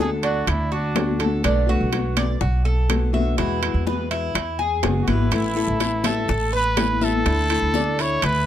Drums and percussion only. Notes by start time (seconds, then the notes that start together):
0.00 high bongo
0.23 high bongo, high conga, high timbale
0.47 high bongo, high conga, high timbale
0.72 high bongo, high conga
0.96 high bongo, low bongo, high conga, high timbale, low timbale
1.20 high conga, high timbale
1.44 high bongo, high conga, high timbale
1.69 high conga
1.93 high bongo, high conga, high timbale
2.17 high conga, high timbale
2.41 high bongo
2.66 high conga
2.90 high bongo, low bongo, high conga, high timbale
3.14 high conga
3.38 high bongo, high conga, high timbale
3.62 high bongo, high conga, high timbale
3.87 high bongo, high conga
4.11 high bongo, high conga, high timbale
4.35 high bongo, high conga, high timbale
4.59 high bongo, high conga
4.83 high bongo, low bongo, high conga, high timbale, low timbale
5.07 high conga, high timbale
5.31 high bongo, high conga, high timbale, long guiro
5.56 high conga
5.80 high bongo, high conga, high timbale, short guiro
6.04 high conga, high timbale, short guiro
6.28 high bongo, high conga, long guiro
6.53 high conga
6.77 high bongo, low bongo, high conga, high timbale, low timbale, short guiro
7.01 high conga, short guiro
7.26 high bongo, high conga, high timbale, long guiro
7.50 high bongo, high conga, high timbale
7.74 high bongo, high conga, short guiro
7.99 high bongo, high conga, high timbale, short guiro
8.22 high bongo, high conga, high timbale, long guiro